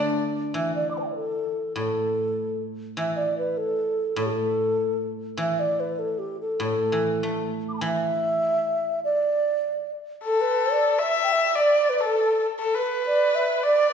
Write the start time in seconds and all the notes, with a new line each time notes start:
Already playing: D3 A3 D4 D5
0.54 E3 E5
0.75 D5
0.91 D6
0.95 B4 A5 B5
1.01 G5
1.06 D5 E5
1.12 A4 B4
1.76 A2 A4
2.97 E3 E5
3.17 D5
3.38 B4
3.57 A4
4.16 A2 A4
4.26 G4
4.31 A4
5.37 E3 E5
5.60 D5
5.80 B4
5.96 A4 B4
6.19 G4
6.41 A4
6.60 A2 A4
6.92 E3
7.23 A3
7.69 D6
7.74 A5 B5
7.81 E3 E5 G5
9.05 D5
10.24 A4
10.41 B4
10.72 D5
10.98 E5
11.03 E5
11.23 G5
11.32 E5
11.55 D5
11.89 B4
12.00 A4
12.06 A4
12.59 A4
12.64 A4
12.75 B4
13.06 D5
13.35 E5
13.63 D5